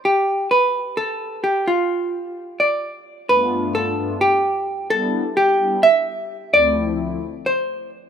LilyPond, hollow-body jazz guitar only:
\new Staff \with { instrumentName = "Hollow-body jazz guitar" } { \time 7/8 \key g \mixolydian \tempo 4 = 129 g'4 b'4 a'4 g'8 | f'2 d''4. | b'4 a'4 g'4. | a'4 g'4 e''4. |
d''2 c''4 r8 | }